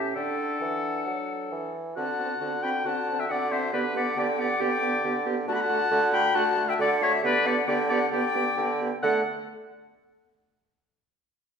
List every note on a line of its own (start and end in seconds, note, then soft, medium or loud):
0.00 0.15 A2 medium
0.00 0.17 C#4 medium
0.00 0.14 G4 medium
0.00 0.15 G4 loud
0.00 0.16 E5 medium
0.15 0.60 D3 medium
0.15 1.75 D4 medium
0.15 1.71 A4 medium
0.15 1.72 A4 medium
0.15 0.62 G5 loud
0.60 1.06 E3 medium
0.60 1.52 F#5 medium
1.06 1.51 F#3 medium
1.52 1.96 E3 medium
1.96 2.36 D3 medium
1.96 2.07 C4 medium
1.96 2.06 F#4 medium
1.96 2.64 F#5 loud
1.96 2.60 A5 loud
2.19 2.30 C4 medium
2.19 2.29 F#4 medium
2.40 2.80 D3 loud
2.40 2.52 C4 medium
2.40 2.50 F#4 medium
2.63 2.74 C4 medium
2.63 2.73 F#4 medium
2.63 2.87 G5 loud
2.63 2.70 B5 loud
2.84 3.24 D3 medium
2.84 2.97 C4 medium
2.84 2.95 F#4 medium
2.84 3.21 F#5 loud
2.84 3.21 A5 loud
3.07 3.19 C4 medium
3.07 3.17 F#4 medium
3.19 3.33 E5 medium
3.19 3.28 G5 loud
3.28 3.68 D3 loud
3.28 3.40 C4 medium
3.28 3.38 F#4 medium
3.28 3.54 D5 loud
3.28 3.50 F#5 loud
3.50 3.62 C4 medium
3.50 3.60 F#4 medium
3.50 3.73 C5 loud
3.50 3.73 E5 loud
3.73 4.12 D3 medium
3.73 3.84 B3 medium
3.73 3.83 G4 medium
3.73 3.95 B4 loud
3.73 3.79 D5 medium
3.94 4.05 B3 medium
3.94 4.04 G4 medium
3.94 4.18 D5 loud
3.94 4.19 F#5 loud
4.16 4.55 D3 loud
4.16 4.27 B3 medium
4.16 4.27 G4 medium
4.16 4.28 D5 medium
4.16 4.40 G5 loud
4.38 4.49 B3 medium
4.38 4.48 G4 medium
4.38 4.61 D5 loud
4.38 4.62 F#5 loud
4.60 4.99 D3 medium
4.60 4.71 B3 medium
4.60 4.70 G4 loud
4.60 5.25 D5 loud
4.60 5.26 G5 loud
4.82 4.92 B3 medium
4.82 4.92 G4 medium
5.04 5.43 D3 loud
5.04 5.14 B3 medium
5.04 5.15 G4 medium
5.26 5.36 B3 medium
5.26 5.36 G4 loud
5.48 5.86 D3 loud
5.48 5.58 A3 loud
5.48 5.58 F#4 loud
5.48 6.15 F#5 loud
5.48 5.54 A5 loud
5.54 5.62 B5 loud
5.61 6.12 A5 loud
5.69 5.80 A3 medium
5.69 5.79 F#4 medium
5.91 6.30 D3 loud
5.91 6.01 A3 loud
5.91 6.01 F#4 medium
6.12 6.23 A3 loud
6.12 6.23 F#4 loud
6.12 6.37 G5 loud
6.12 6.36 B5 loud
6.34 6.74 D3 loud
6.34 6.44 A3 loud
6.34 6.45 F#4 loud
6.34 6.70 F#5 loud
6.34 6.68 A5 loud
6.57 6.67 A3 medium
6.57 6.67 F#4 medium
6.68 6.80 E5 loud
6.68 6.74 G5 loud
6.79 7.18 D3 loud
6.79 6.89 A3 medium
6.79 6.89 F#4 medium
6.79 6.91 D5 loud
6.79 7.04 F#5 loud
7.01 7.11 A3 loud
7.01 7.11 F#4 medium
7.01 7.13 C#5 loud
7.01 7.24 E5 loud
7.23 7.62 D3 loud
7.23 7.34 B3 loud
7.23 7.33 G4 medium
7.23 7.46 B4 loud
7.23 7.48 D5 loud
7.46 7.56 B3 loud
7.46 7.56 G4 medium
7.46 7.57 D5 loud
7.46 7.69 F#5 loud
7.68 8.07 D3 loud
7.68 7.78 B3 loud
7.68 7.78 G4 medium
7.68 7.78 D5 loud
7.68 7.92 G5 loud
7.89 8.01 B3 loud
7.89 8.00 G4 loud
7.89 7.99 D5 loud
7.89 8.13 F#5 loud
8.11 8.52 D3 loud
8.11 8.23 B3 loud
8.11 8.23 G4 loud
8.11 8.79 D5 loud
8.11 8.80 G5 loud
8.34 8.46 B3 medium
8.34 8.45 G4 medium
8.57 8.91 D3 loud
8.57 8.69 B3 medium
8.57 8.67 G4 medium
8.81 8.92 B3 medium
8.81 8.91 G4 medium
9.02 9.22 D3 loud
9.02 9.22 A3 medium
9.02 9.22 A4 medium
9.02 9.21 F#5 loud
9.02 9.28 F#5 loud